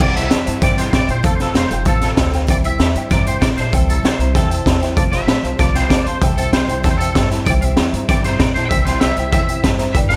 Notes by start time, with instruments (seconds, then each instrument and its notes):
0.00 upright bass C2, steel-string acoustic guitar C3 E3 G3 C4 E4 C5, clean electric guitar D5, honky-tonk piano G5, kick, crash
0.14 steel-string acoustic guitar G3 C4 E4 C5, honky-tonk piano C5 E5 A5, clean electric guitar E5, snare, closed hi-hat
0.30 upright bass E2, steel-string acoustic guitar G3 C4 E4 C5, honky-tonk piano C5 E5 A5, snare, closed hi-hat
0.45 upright bass G2, steel-string acoustic guitar C4 E4 C5, honky-tonk piano C5 E5 A5, closed hi-hat
0.50 steel-string acoustic guitar G3
0.61 upright bass G2, steel-string acoustic guitar C3 E3 G3 C4 E4 C5, honky-tonk piano C5 E5 G5, clean electric guitar D5, kick, snare, closed hi-hat
0.77 steel-string acoustic guitar G3 C4 E4 C5, honky-tonk piano C5 E5 G5, clean electric guitar C5, snare, closed hi-hat
0.93 upright bass A2, steel-string acoustic guitar G3 C4 E4 C5, honky-tonk piano C5 E5 G5, clean electric guitar D5, kick, snare, closed hi-hat
1.08 upright bass A#2, steel-string acoustic guitar G3 C4 E4 C5, honky-tonk piano C5 E5 G5, clean electric guitar C5, closed hi-hat
1.23 upright bass F1, steel-string acoustic guitar F3 A3 C4 F4 A4, clean electric guitar A4, honky-tonk piano C5 F5 A5, kick, closed hi-hat
1.35 steel-string acoustic guitar A4, clean electric guitar C5
1.40 steel-string acoustic guitar C4 F4, clean electric guitar A4, honky-tonk piano C5 F5 A5, snare, closed hi-hat
1.54 upright bass F1, steel-string acoustic guitar A3 C4 F4 A4, honky-tonk piano C5 F5 C6, clean electric guitar C5, snare, closed hi-hat
1.69 upright bass F1, steel-string acoustic guitar C4 F4 A4, honky-tonk piano C5 F5, closed hi-hat
1.73 honky-tonk piano G5
1.85 upright bass A1, steel-string acoustic guitar F3 A3 C4 F4 A4, clean electric guitar A4, honky-tonk piano C5 F5 A5, kick, closed hi-hat
2.01 steel-string acoustic guitar C4 F4 A4, honky-tonk piano C5 F5 A5, snare, closed hi-hat
2.17 upright bass D2, steel-string acoustic guitar A3 C4 F4 A4, honky-tonk piano C5 F5 G5, kick, snare, closed hi-hat
2.31 steel-string acoustic guitar C4 F4 A4, honky-tonk piano C5 F5, snare, closed hi-hat
2.35 honky-tonk piano G5
2.47 upright bass C2, steel-string acoustic guitar C3 E3 G3 C4 E4 C5, honky-tonk piano C5 E5 G5, clean electric guitar D5, kick, closed hi-hat
2.63 steel-string acoustic guitar G3 C4 E4 C5, honky-tonk piano C5 E5, clean electric guitar E5, closed hi-hat
2.67 honky-tonk piano G5
2.78 upright bass E2, steel-string acoustic guitar G3 C4 E4 C5, honky-tonk piano C5 E5 A5, snare, closed hi-hat
2.94 upright bass G2, steel-string acoustic guitar G3 C4 E4 C5, honky-tonk piano C5 E5 G5, closed hi-hat
3.10 upright bass G2, steel-string acoustic guitar C3 E3 G3 C4 E4 C5, honky-tonk piano C5 E5 A#5, clean electric guitar D5, kick, snare, closed hi-hat
3.25 steel-string acoustic guitar G3 C4 E4 C5, honky-tonk piano C5 E5 G5, clean electric guitar C5, closed hi-hat
3.40 upright bass A2, steel-string acoustic guitar G3 C4 E4 C5, honky-tonk piano C5 E5 A#5, clean electric guitar D5, kick, snare, closed hi-hat
3.56 upright bass A#2, steel-string acoustic guitar G3 C4 E4 C5, clean electric guitar C5, honky-tonk piano C5 E5 A5, snare, closed hi-hat
3.72 upright bass C2, steel-string acoustic guitar C3 E3 G3 C4 E4 C5, clean electric guitar A4, honky-tonk piano C5 E5 G5, kick, closed hi-hat
3.88 steel-string acoustic guitar G3 C4 E4 C5, clean electric guitar A4, honky-tonk piano C5 E5 A#5, closed hi-hat
4.03 upright bass C2, steel-string acoustic guitar G3 C4 E4 C5, honky-tonk piano C5 E5 G5, clean electric guitar C5, snare, closed hi-hat
4.19 upright bass C2, steel-string acoustic guitar G3 C4 E4 C5, honky-tonk piano C5 E5 A#5, closed hi-hat
4.34 upright bass E2, steel-string acoustic guitar C3 E3 G3 C4 E4 C5, clean electric guitar A4, honky-tonk piano C5 E5 G5, kick, snare, closed hi-hat
4.49 steel-string acoustic guitar E4 C5, honky-tonk piano C5 E5 G5, closed hi-hat
4.54 steel-string acoustic guitar G3 C4
4.65 upright bass E2, steel-string acoustic guitar G3 C4 E4 C5, honky-tonk piano C5 E5 A5, kick, snare, closed hi-hat
4.80 steel-string acoustic guitar G3 C4 E4 C5, honky-tonk piano C5 E5 G5, snare, closed hi-hat
4.96 upright bass F1, steel-string acoustic guitar F3 A3 C4 F4 C5, honky-tonk piano C5 F5 A5, clean electric guitar D5, kick, closed hi-hat
5.11 steel-string acoustic guitar F4 C5, honky-tonk piano C5 F5 C6, clean electric guitar E5, snare, closed hi-hat
5.16 steel-string acoustic guitar C4
5.27 upright bass A1, steel-string acoustic guitar A3 C4 F4 C5, honky-tonk piano C5 F5 A5, snare, closed hi-hat
5.43 upright bass C2, steel-string acoustic guitar C4 F4 C5, honky-tonk piano C5 F5 A5, closed hi-hat
5.57 upright bass C2, steel-string acoustic guitar F3 A3 C4 F4 C5, honky-tonk piano C5 F5 A5, clean electric guitar D5, kick, snare, closed hi-hat
5.75 steel-string acoustic guitar C4 F4 C5, honky-tonk piano C5 F5 G5, clean electric guitar C5, snare, closed hi-hat
5.89 upright bass D2, steel-string acoustic guitar A3 C4 F4 C5, honky-tonk piano C5 F5 A5, clean electric guitar D5, kick, snare, closed hi-hat
6.06 upright bass D2, steel-string acoustic guitar F4 C5, honky-tonk piano C5 F5 A5, clean electric guitar C5, closed hi-hat
6.10 steel-string acoustic guitar C4
6.22 upright bass C2, steel-string acoustic guitar C3 E3 G3 C4 E4 C5, clean electric guitar A4, honky-tonk piano C5 E5 G5, kick, closed hi-hat
6.37 steel-string acoustic guitar G3 C4 E4 C5, clean electric guitar A4, honky-tonk piano C5 E5 G5, closed hi-hat
6.52 upright bass C2, steel-string acoustic guitar C4 E4 C5, honky-tonk piano C5 E5 G5, clean electric guitar C5, snare, closed hi-hat
6.67 upright bass C2, steel-string acoustic guitar G3 C4 E4 C5, honky-tonk piano C5 E5 G5, closed hi-hat
6.83 upright bass E2, steel-string acoustic guitar C3 E3 G3 C4 E4 C5, clean electric guitar A4, honky-tonk piano C5 E5 G5, kick, snare, closed hi-hat
6.91 clean electric guitar C5
6.98 steel-string acoustic guitar G3 C4 E4 C5, clean electric guitar A4, honky-tonk piano C5 E5, closed hi-hat
7.02 honky-tonk piano G5
7.15 upright bass G2, steel-string acoustic guitar G3 C4 E4 C5, honky-tonk piano C5 E5 G5, kick, snare, closed hi-hat
7.30 steel-string acoustic guitar G3 C4 E4 C5, honky-tonk piano C5 E5 A5, snare, closed hi-hat
7.45 upright bass C2, steel-string acoustic guitar C3 E3 G3 C4 E4 C5, honky-tonk piano C5 E5, clean electric guitar D5, kick, closed hi-hat
7.50 honky-tonk piano G5
7.61 steel-string acoustic guitar G3 C4 E4 C5, honky-tonk piano C5 E5 G5, clean electric guitar E5, closed hi-hat
7.77 upright bass E2, steel-string acoustic guitar G3 C4 E4 C5, honky-tonk piano C5 E5 G5, snare, closed hi-hat
7.93 upright bass G2, steel-string acoustic guitar G3 C4 E4 C5, honky-tonk piano C5 E5 A#5, closed hi-hat
8.09 upright bass G2, steel-string acoustic guitar C3 E3 G3 C4 E4 C5, honky-tonk piano C5 E5 G5, clean electric guitar D5, kick, snare, closed hi-hat
8.24 steel-string acoustic guitar G3 C4 E4 C5, clean electric guitar C5, honky-tonk piano C5 E5 A#5, snare, closed hi-hat
8.39 upright bass A2, honky-tonk piano C5 E5 A#5, steel-string acoustic guitar C5, clean electric guitar D5, kick, snare, closed hi-hat
8.54 upright bass A#2, steel-string acoustic guitar G3 C4 E4 C5, clean electric guitar C5, honky-tonk piano C5 E5 A5, snare, closed hi-hat
8.65 clean electric guitar E5 G5
8.70 upright bass C2, steel-string acoustic guitar C3 E3 G3 C4 E4 C5, honky-tonk piano C5 E5 G5, kick, closed hi-hat
8.85 steel-string acoustic guitar C4 E4 C5, clean electric guitar C5, honky-tonk piano C5 E5 G5, snare, closed hi-hat
8.89 steel-string acoustic guitar G3
9.00 upright bass C2, steel-string acoustic guitar G3 C4, honky-tonk piano C5 E5 G5, clean electric guitar E5, snare, closed hi-hat
9.04 steel-string acoustic guitar E4 C5
9.16 upright bass C2, steel-string acoustic guitar G3 C4 E4 C5, honky-tonk piano C5 E5 G5, closed hi-hat
9.32 upright bass E2, steel-string acoustic guitar C3 E3 G3 C4 E4 C5, honky-tonk piano C5 E5 G5, clean electric guitar E5, kick, snare, closed hi-hat
9.48 steel-string acoustic guitar G3 C4 E4 C5, honky-tonk piano C5 E5 G5, closed hi-hat
9.63 upright bass G2, steel-string acoustic guitar G3 C4 E4 C5, honky-tonk piano C5 E5 A5, kick, snare, closed hi-hat
9.78 steel-string acoustic guitar G3 C4 E4 C5, honky-tonk piano C5 E5 A#5, snare, closed hi-hat
9.93 upright bass G1, steel-string acoustic guitar G3 D4 G4 B4, honky-tonk piano B4 D5 G5, clean electric guitar E5, kick, closed hi-hat
10.09 steel-string acoustic guitar D4 G4 B4, honky-tonk piano B4 D5 A5, clean electric guitar G5, snare, closed hi-hat